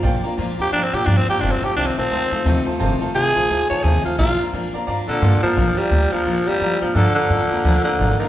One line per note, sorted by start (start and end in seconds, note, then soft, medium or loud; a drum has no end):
0.02 0.17 A#1 loud
0.02 0.24 A#2 medium
0.02 0.24 F3 loud
0.02 0.24 A#3 medium
0.02 0.24 D4 loud
0.02 0.23 F4 loud
0.02 0.15 D5 loud
0.02 0.15 F5 loud
0.02 0.16 G5 loud
0.23 0.37 A#3 soft
0.23 0.38 D4 medium
0.23 0.38 F4 medium
0.23 0.32 D5 medium
0.23 0.32 F5 medium
0.23 0.32 A#5 loud
0.23 muted upright bass stroke medium
0.37 0.52 F2 loud
0.37 0.59 A#2 medium
0.37 0.59 F3 medium
0.37 0.59 A#3 loud
0.37 0.58 D4 medium
0.37 0.57 F4 medium
0.37 0.50 D5 medium
0.37 0.50 F5 medium
0.37 0.51 A#5 loud
0.58 0.68 D#2 medium
0.58 0.72 A#3 soft
0.58 0.73 D4 medium
0.58 0.72 F4 medium
0.58 0.72 G4 loud
0.58 0.67 D5 medium
0.58 0.67 F5 medium
0.58 0.67 A#5 medium
0.72 0.87 G2 medium
0.72 0.93 F3 medium
0.72 0.94 A#3 medium
0.72 0.85 D4 loud
0.72 0.93 D4 medium
0.72 0.92 F4 medium
0.72 0.85 D5 medium
0.72 0.85 F5 medium
0.72 0.85 A#5 loud
0.83 0.96 C4 loud
0.93 1.03 A#2 medium
0.93 1.07 A#3 soft
0.93 1.07 D4 medium
0.93 1.07 F4 medium
0.93 1.08 G4 loud
0.93 1.01 D5 medium
0.93 1.02 F5 medium
0.93 1.02 A#5 medium
1.06 1.21 G2 loud
1.06 1.28 A#2 medium
1.06 1.28 F3 medium
1.06 1.28 A#3 medium
1.06 1.19 D4 medium
1.06 1.28 D4 loud
1.06 1.26 F4 medium
1.06 1.19 D5 medium
1.06 1.19 F5 medium
1.06 1.20 A#5 medium
1.17 1.29 C4 loud
1.27 1.42 A#3 soft
1.27 1.42 D4 soft
1.27 1.41 F4 medium
1.27 1.42 G4 loud
1.27 1.36 D5 medium
1.27 1.36 F5 medium
1.27 1.36 A#5 medium
1.27 muted upright bass stroke medium
1.41 1.56 F1 loud
1.41 1.62 F2 medium
1.41 1.62 C3 medium
1.41 1.63 D#3 medium
1.41 1.63 A3 medium
1.41 1.53 D4 loud
1.41 1.62 D#4 medium
1.41 1.61 F4 loud
1.41 1.54 C5 medium
1.41 1.54 F5 medium
1.41 1.55 A5 loud
1.51 1.66 C4 medium
1.62 1.75 D#3 soft
1.62 1.76 A3 soft
1.62 1.76 D#4 medium
1.62 1.76 F4 medium
1.62 1.76 G4 loud
1.62 1.71 C5 medium
1.62 1.71 F5 medium
1.62 1.71 A5 medium
1.62 muted upright bass stroke medium
1.76 1.91 C2 loud
1.76 1.97 F2 medium
1.76 1.97 C3 medium
1.76 1.97 D#3 medium
1.76 1.97 A3 medium
1.76 1.88 D4 loud
1.76 1.96 D#4 medium
1.76 1.95 F4 medium
1.76 1.89 C5 medium
1.76 1.89 F5 medium
1.76 1.89 A5 medium
1.86 1.98 C4 medium
1.96 2.06 A#1 medium
1.96 2.09 D#3 soft
1.96 2.10 A3 soft
1.96 2.66 C4 loud
1.96 2.11 D#4 soft
1.96 2.11 F4 medium
1.96 2.05 C5 medium
1.96 2.06 F5 medium
1.96 2.06 A5 medium
2.10 2.25 D2 loud
2.10 2.31 D#3 medium
2.10 2.32 A3 medium
2.10 2.31 D#4 medium
2.10 2.30 F4 medium
2.10 2.23 C5 loud
2.10 2.24 F5 medium
2.10 2.24 A5 loud
2.31 2.41 F2 loud
2.31 2.45 D#3 soft
2.31 2.45 A3 medium
2.31 2.45 D#4 medium
2.31 2.45 F4 medium
2.31 2.40 C5 medium
2.31 2.40 F5 medium
2.31 2.40 A5 medium
2.45 2.60 D#2 loud
2.45 2.66 F2 medium
2.45 2.66 C3 loud
2.45 2.66 D#3 medium
2.45 2.66 A3 loud
2.45 2.65 D#4 loud
2.45 2.64 F4 loud
2.45 2.58 C5 medium
2.45 2.58 F5 medium
2.45 2.58 A5 loud
2.65 2.79 D#3 medium
2.65 2.79 A3 medium
2.65 2.80 D#4 medium
2.65 2.80 F4 medium
2.65 2.74 C5 medium
2.65 2.74 F5 medium
2.65 2.75 A5 loud
2.65 muted upright bass stroke medium
2.79 2.95 F1 loud
2.79 3.01 F2 medium
2.79 3.01 C3 medium
2.79 3.01 D#3 medium
2.79 3.01 A3 loud
2.79 3.00 D#4 loud
2.79 2.99 F4 loud
2.79 2.92 C5 loud
2.79 2.92 F5 loud
2.79 2.93 A5 loud
3.00 3.14 D#3 medium
3.00 3.14 A3 medium
3.00 3.14 D#4 medium
3.00 3.14 F4 medium
3.00 3.09 C5 medium
3.00 3.09 F5 medium
3.00 3.10 A5 medium
3.00 muted upright bass stroke medium
3.14 3.29 C2 medium
3.14 3.35 F2 medium
3.14 3.35 C3 medium
3.14 3.35 D#3 medium
3.14 3.36 A3 medium
3.14 3.35 D#4 medium
3.14 3.33 F4 medium
3.14 3.69 G#4 loud
3.14 3.27 C5 medium
3.14 3.27 F5 medium
3.35 3.45 A#1 loud
3.35 3.47 D#3 soft
3.35 3.48 A3 soft
3.35 3.49 D#4 medium
3.35 3.49 F4 medium
3.35 3.44 C5 medium
3.35 3.44 F5 medium
3.35 3.44 A5 medium
3.48 3.64 D2 medium
3.48 3.69 D#3 medium
3.48 3.70 A3 medium
3.48 3.69 D#4 medium
3.48 3.68 F4 medium
3.48 3.62 C5 medium
3.48 3.62 F5 medium
3.48 3.62 A5 loud
3.69 3.80 F2 loud
3.69 3.83 D#3 soft
3.69 3.83 A3 medium
3.69 3.84 D#4 medium
3.69 3.83 F4 medium
3.69 3.78 C5 medium
3.69 3.85 C#5 medium
3.69 3.79 F5 medium
3.69 3.79 A5 medium
3.83 3.98 D#2 medium
3.83 4.04 F2 medium
3.83 4.05 C3 medium
3.83 4.05 D#3 medium
3.83 4.05 A3 medium
3.83 4.04 D#4 loud
3.83 4.02 F4 loud
3.83 4.04 G#4 loud
3.83 3.96 C5 medium
3.83 3.96 F5 medium
3.83 3.97 A5 medium
4.04 4.18 D#3 soft
4.04 4.18 A3 medium
4.04 4.18 D#4 soft
4.04 4.18 F4 medium
4.04 4.13 C5 medium
4.04 4.13 F5 medium
4.04 4.14 A5 medium
4.04 muted upright bass stroke medium
4.17 4.33 A#1 loud
4.17 4.39 A#2 medium
4.17 4.39 F3 medium
4.17 4.39 A#3 medium
4.17 4.39 D4 loud
4.17 4.52 F4 loud
4.17 4.37 F4 loud
4.17 4.31 D5 loud
4.17 4.31 F5 medium
4.17 4.31 A#5 loud
4.38 4.52 A#3 soft
4.38 4.53 D4 medium
4.38 4.53 F4 medium
4.38 4.47 D5 medium
4.38 4.48 F5 medium
4.38 4.48 A#5 medium
4.38 muted upright bass stroke medium
4.52 4.67 F2 loud
4.52 4.73 A#2 medium
4.52 4.74 F3 medium
4.52 4.74 A#3 medium
4.52 4.73 D4 medium
4.52 4.71 F4 medium
4.52 4.66 D5 medium
4.52 4.66 F5 medium
4.52 4.66 A#5 medium
4.73 4.83 D#2 medium
4.73 4.87 A#3 medium
4.73 4.88 D4 medium
4.73 4.87 F4 medium
4.73 4.82 D5 loud
4.73 4.82 F5 medium
4.73 4.83 A#5 loud
4.87 5.02 G2 medium
4.87 5.08 F3 medium
4.87 5.09 A#3 medium
4.87 5.08 D4 medium
4.87 5.06 F4 medium
4.87 5.00 D5 loud
4.87 5.00 F5 loud
4.87 5.00 A#5 loud
5.08 5.18 A#2 loud
5.08 5.40 D3 loud
5.08 5.21 A#3 medium
5.08 5.21 D4 medium
5.08 5.22 F4 medium
5.08 5.17 D5 medium
5.08 5.17 F5 medium
5.08 5.17 A#5 medium
5.21 5.36 G2 loud
5.21 5.42 A#2 loud
5.21 5.43 F3 medium
5.21 5.43 A#3 loud
5.21 5.43 D4 loud
5.21 5.41 F4 loud
5.21 5.34 D5 medium
5.21 5.35 F5 medium
5.21 5.35 C6 loud
5.42 5.79 F3 loud
5.42 5.56 A#3 medium
5.42 5.57 D4 medium
5.42 5.57 F4 medium
5.42 5.51 D5 medium
5.42 5.51 F5 medium
5.42 5.52 A#5 loud
5.42 muted upright bass stroke medium
5.56 5.69 A#1 loud
5.56 5.77 A#2 medium
5.56 5.78 F3 medium
5.56 5.78 A#3 medium
5.56 5.77 D4 medium
5.56 5.76 F4 loud
5.56 5.69 D5 medium
5.56 5.69 F5 medium
5.56 5.70 A#5 loud
5.77 6.13 G3 loud
5.77 5.91 A#3 soft
5.77 5.92 D4 soft
5.77 5.91 F4 medium
5.77 5.86 D5 medium
5.77 5.86 F5 medium
5.77 5.86 A#5 medium
5.77 muted upright bass stroke medium
5.91 6.03 D2 medium
5.91 6.12 F3 medium
5.91 6.12 A#3 medium
5.91 6.12 D4 medium
5.91 6.10 F4 medium
5.91 6.04 D5 medium
5.91 6.04 A#5 medium
6.12 6.49 F3 loud
6.12 6.25 A#3 soft
6.12 6.26 D4 soft
6.12 6.26 F4 medium
6.12 6.20 D5 medium
6.12 6.20 F5 medium
6.12 6.21 A#5 medium
6.12 muted upright bass stroke medium
6.25 6.38 F2 medium
6.25 6.47 A#2 medium
6.25 6.47 F3 medium
6.25 6.47 A#3 medium
6.25 6.47 D4 medium
6.25 6.45 F4 medium
6.25 6.38 D5 medium
6.25 6.38 F5 medium
6.25 6.39 A#5 medium
6.46 6.55 G2 medium
6.46 6.81 G3 loud
6.46 6.60 A#3 medium
6.46 6.61 D4 soft
6.46 6.60 F4 medium
6.46 6.55 D5 medium
6.46 6.55 F5 medium
6.46 6.55 A#5 medium
6.60 6.73 F2 medium
6.60 6.81 F3 medium
6.60 6.82 A#3 medium
6.60 6.82 D4 medium
6.60 6.80 F4 medium
6.60 6.73 D5 loud
6.60 6.73 F5 medium
6.60 6.73 A#5 loud
6.81 6.90 G#2 medium
6.81 6.97 F3 medium
6.81 6.95 A#3 soft
6.81 6.96 D4 soft
6.81 6.95 F4 medium
6.81 6.89 D5 medium
6.81 6.90 F5 medium
6.81 6.90 A#5 loud
6.95 7.08 G2 loud
6.95 7.16 A#2 medium
6.95 7.14 D3 loud
6.95 7.17 F3 medium
6.95 7.17 A#3 medium
6.95 7.16 D4 medium
6.95 7.14 F4 loud
6.95 7.07 D5 loud
6.95 7.08 F5 medium
6.95 7.08 A#5 loud
7.15 7.81 D3 loud
7.15 7.30 F4 medium
7.15 7.24 D5 medium
7.15 7.24 F5 medium
7.15 7.25 A#5 medium
7.15 muted upright bass stroke medium
7.29 7.42 F2 medium
7.29 7.50 F3 medium
7.29 7.51 A#3 medium
7.29 7.50 D4 medium
7.29 7.49 F4 medium
7.29 7.42 D5 medium
7.29 7.43 F5 medium
7.29 7.43 A#5 medium
7.50 7.64 A#3 soft
7.50 7.64 D4 soft
7.50 7.64 F4 medium
7.50 7.59 D5 medium
7.50 7.59 F5 medium
7.50 7.59 A#5 medium
7.50 muted upright bass stroke medium
7.64 7.77 D2 medium
7.64 7.85 A#2 loud
7.64 7.85 F3 loud
7.64 7.86 A#3 loud
7.64 7.85 D4 medium
7.64 7.83 F4 loud
7.64 7.77 D5 medium
7.64 7.77 F5 medium
7.64 7.77 A#5 medium
7.84 8.17 D3 loud
7.84 7.99 A#3 soft
7.84 7.99 D4 medium
7.84 7.99 F4 medium
7.84 7.94 D5 medium
7.84 7.94 F5 medium
7.84 7.94 A#5 medium
7.84 muted upright bass stroke medium
7.99 8.12 G#1 loud
7.99 8.20 F3 medium
7.99 8.20 A#3 medium
7.99 8.20 D4 medium
7.99 8.18 F4 medium
7.99 8.12 D5 loud
7.99 8.12 F5 medium
7.99 8.12 A#5 loud
8.19 8.29 D#3 medium
8.19 8.29 A#3 soft
8.19 8.29 D4 medium
8.19 8.29 F4 medium
8.19 8.28 D5 medium
8.19 8.28 F5 medium
8.19 8.29 A#5 loud